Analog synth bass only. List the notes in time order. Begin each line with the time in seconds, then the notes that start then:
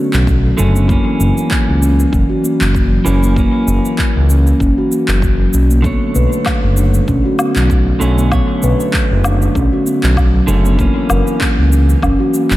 0.14 B1
0.59 F#1
1.20 F#1
1.68 C#2
2.13 F#1
2.61 F#1
3.06 F#1
3.67 F#1
4.16 C#2
4.60 F#1
5.08 F#1
5.54 B1
6.15 B1
6.63 F#1
7.08 B1
7.56 B1
8.01 B1
8.63 B1
9.11 F#1
9.55 B1
10.03 B1
10.48 F#1
11.10 F#1
11.58 C#2
12.02 F#1
12.51 F#1